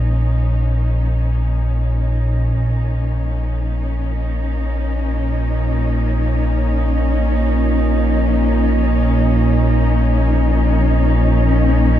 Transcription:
0.00 2.53 A#1 medium
0.00 2.51 A#2 medium
0.00 11.99 F3 soft
0.00 11.99 A#3 medium
0.00 11.99 C#4 medium
0.00 11.99 D#4 medium
2.53 11.99 A#1 medium
2.53 11.99 A#2 medium

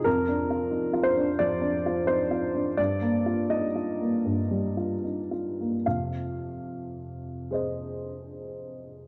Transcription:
0.04 1.35 F2 soft
0.04 1.05 A#4 medium
0.29 0.63 D4 soft
0.50 0.86 F4 soft
0.71 0.94 D#4 soft
0.93 1.30 F4 soft
1.03 1.38 C5 medium
1.17 1.53 D4 soft
1.39 1.76 F3 soft
1.39 2.07 D5 medium
1.62 1.98 D4 soft
1.86 2.22 F4 soft
2.07 2.31 D#4 soft
2.07 2.78 C5 medium
2.31 2.69 F4 soft
2.55 2.78 D4 soft
2.77 4.20 G2 soft
2.77 3.50 D5 medium
3.01 3.40 A#3 soft
3.26 3.65 F4 soft
3.50 3.75 D#4 soft
3.50 5.03 D#5 medium
3.75 4.15 F4 soft
4.01 4.40 A#3 soft
4.26 5.81 G2 soft
4.51 4.92 G3 soft
4.77 5.19 F4 soft
5.04 5.30 D#4 soft
5.31 5.75 F4 soft
5.61 5.86 A#3 soft
5.86 9.07 F2 soft
5.86 9.07 C3 soft
5.86 9.07 F5 soft
7.51 9.07 G#4 soft
7.51 9.07 C5 soft
7.51 9.07 D#5 soft

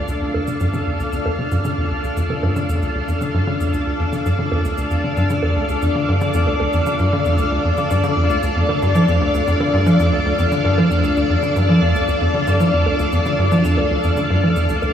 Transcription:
0.00 14.93 D4 medium
0.00 14.93 A4 medium
0.00 14.93 D5 medium
0.00 14.93 F5 medium
0.08 0.15 D2 medium
0.08 cabasa medium
0.21 0.29 D2 medium
0.34 0.42 F2 medium
0.34 low bongo medium
0.47 0.55 D3 medium
0.47 cabasa soft
0.60 0.71 G2 loud
0.60 cabasa medium
0.73 0.81 D3 medium
0.73 cabasa soft
0.87 0.97 F2 medium
0.99 1.07 D2 medium
0.99 cabasa soft
1.12 1.20 D2 medium
1.12 cabasa medium
1.26 1.33 F2 medium
1.26 low bongo medium
1.39 1.46 D3 medium
1.51 1.62 G2 loud
1.51 cabasa soft
1.65 1.72 D3 loud
1.65 cabasa medium
1.78 1.89 F2 medium
1.91 1.98 D2 medium
2.04 2.11 D2 medium
2.04 cabasa soft
2.17 2.24 F2 medium
2.17 cabasa medium
2.30 2.37 D3 medium
2.30 low bongo medium
2.43 2.54 G2 loud
2.43 low bongo medium
2.56 2.63 D3 medium
2.56 cabasa soft
2.69 2.80 F2 medium
2.69 cabasa medium
2.82 2.89 D2 medium
2.82 cabasa soft
2.95 3.02 D2 medium
3.08 3.15 F2 medium
3.08 cabasa soft
3.21 3.28 D3 medium
3.21 cabasa medium
3.34 3.45 G2 loud
3.47 3.54 D3 loud
3.60 3.71 F2 medium
3.60 cabasa soft
3.73 3.81 D2 medium
3.73 cabasa medium
3.86 3.94 D2 medium
3.99 4.07 F2 medium
4.12 4.20 D3 medium
4.12 cabasa soft
4.26 4.36 G2 medium
4.26 cabasa medium
4.39 4.46 D3 medium
4.52 4.63 F2 medium
4.52 low bongo medium
4.65 4.72 D2 medium
4.65 cabasa medium
4.78 4.85 D2 medium
4.78 cabasa medium
4.91 4.98 F2 medium
4.91 cabasa soft
5.04 5.11 D3 medium
5.17 5.28 G2 loud
5.17 cabasa soft
5.30 5.37 D3 medium
5.30 cabasa medium
5.43 5.54 F2 medium
5.43 low bongo medium
5.56 5.63 D2 medium
5.69 5.76 D2 medium
5.69 cabasa soft
5.82 5.89 F2 medium
5.82 cabasa medium
5.95 6.02 D3 medium
6.08 6.19 G2 loud
6.21 6.28 D3 medium
6.21 cabasa soft
6.34 6.45 F2 medium
6.34 cabasa medium
6.47 6.55 D2 medium
6.47 low bongo soft
6.60 6.68 D2 medium
6.60 low bongo medium
6.73 6.81 F2 medium
6.73 cabasa medium
6.86 6.94 D3 medium
6.86 cabasa medium
6.99 7.10 G2 loud
6.99 cabasa soft
7.13 7.20 D3 loud
7.25 7.36 F2 medium
7.25 cabasa soft
7.38 7.46 D2 medium
7.38 cabasa medium
7.51 7.59 D2 medium
7.65 7.72 F2 medium
7.77 7.85 D3 medium
7.77 cabasa medium
7.91 8.02 G2 medium
7.91 cabasa medium
8.03 8.11 D3 loud
8.03 cabasa soft
8.17 8.28 F2 medium
8.30 8.37 D2 medium
8.30 cabasa soft
8.43 8.50 D2 medium
8.43 cabasa medium
8.56 8.63 F2 medium
8.69 8.76 D3 medium
8.69 low bongo medium
8.82 8.93 G2 medium
8.82 cabasa soft
8.95 9.06 F3 medium
8.95 cabasa medium
9.08 9.19 F2 medium
9.08 cabasa soft
9.21 9.28 D2 medium
9.34 9.41 D2 medium
9.34 cabasa soft
9.47 9.55 F2 medium
9.47 cabasa medium
9.60 9.68 D3 medium
9.60 low bongo medium
9.73 9.84 G2 loud
9.86 9.97 F3 medium
9.86 cabasa soft
9.99 10.10 F2 medium
9.99 cabasa medium
10.13 10.20 D2 medium
10.25 10.33 D2 medium
10.39 10.46 F2 medium
10.39 cabasa soft
10.52 10.59 D3 medium
10.52 cabasa medium
10.65 10.76 G2 medium
10.65 low bongo soft
10.78 10.89 F3 medium
10.78 low bongo medium
10.91 11.02 F2 medium
10.91 cabasa soft
11.04 11.11 D2 medium
11.04 cabasa medium
11.17 11.24 D2 medium
11.17 cabasa soft
11.30 11.37 F2 medium
11.43 11.50 D3 medium
11.43 cabasa soft
11.56 11.67 G2 loud
11.56 cabasa medium
11.69 11.80 F3 medium
11.82 11.93 F2 medium
11.95 12.02 D2 medium
11.95 cabasa soft
12.08 12.15 D2 medium
12.08 cabasa medium
12.21 12.28 F2 medium
12.34 12.41 D3 medium
12.47 12.58 G2 loud
12.47 cabasa soft
12.60 12.71 F3 medium
12.60 cabasa medium
12.73 12.84 F2 medium
12.86 12.94 D2 medium
12.86 low bongo medium
12.99 13.07 D2 medium
12.99 cabasa soft
13.12 13.20 F2 medium
13.12 cabasa medium
13.25 13.33 D3 medium
13.25 cabasa soft
13.38 13.49 G2 loud
13.51 13.63 F3 medium
13.51 cabasa soft
13.65 13.76 F2 medium
13.65 cabasa medium
13.78 13.85 D2 medium
13.78 low bongo medium
13.91 13.98 D2 medium
14.03 14.11 F2 medium
14.03 cabasa soft
14.17 14.24 D3 medium
14.17 cabasa medium
14.30 14.41 G2 loud
14.43 14.54 F3 medium
14.56 14.67 F2 medium
14.56 cabasa soft
14.69 14.76 D2 medium
14.69 cabasa medium
14.82 14.89 D2 medium
14.82 low bongo medium
14.82 cabasa soft

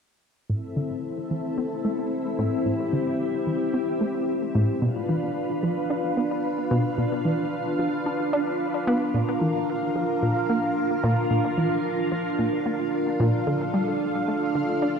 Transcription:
0.49 0.58 A2 medium
0.49 4.78 C4 medium
0.49 4.78 E4 medium
0.49 2.63 A4 medium
0.49 4.78 E5 medium
0.77 0.90 D3 medium
1.31 1.44 E3 medium
1.58 1.71 C4 medium
1.85 1.93 A3 medium
2.39 2.52 A2 medium
2.66 2.74 A2 medium
2.66 4.80 G4 medium
2.93 3.07 D3 medium
3.47 3.61 E3 medium
3.74 3.88 C4 medium
4.01 4.09 A3 medium
4.55 4.69 A2 medium
4.82 4.90 B2 medium
4.82 13.43 D4 medium
4.82 15.00 F4 medium
4.82 9.11 B4 medium
4.82 9.10 F5 medium
5.09 5.23 E3 medium
5.63 5.77 F3 medium
5.90 6.04 D4 medium
6.17 6.25 B3 medium
6.71 6.85 B2 loud
6.98 7.06 B2 medium
7.25 7.39 E3 medium
7.79 7.93 F3 medium
8.06 8.20 D4 medium
8.33 8.54 D4 medium
8.87 9.01 B3 loud
9.14 9.23 A#2 medium
9.14 13.43 A#4 medium
9.14 13.43 F5 medium
9.41 9.55 E3 medium
9.95 10.09 F3 medium
10.22 10.36 A#2 medium
10.49 10.58 A#3 medium
11.04 11.17 A#2 medium
11.31 11.39 A#2 medium
11.58 11.71 E3 medium
12.12 12.25 F3 medium
12.39 12.52 A#2 medium
12.66 12.74 A#3 medium
13.20 13.34 A#2 loud
13.47 13.55 D3 medium
13.47 15.00 D4 medium
13.47 15.00 A4 medium
13.47 15.00 F5 medium
13.74 13.88 G3 medium
14.28 14.42 A3 medium
14.55 14.69 D3 medium
14.82 14.90 D4 medium

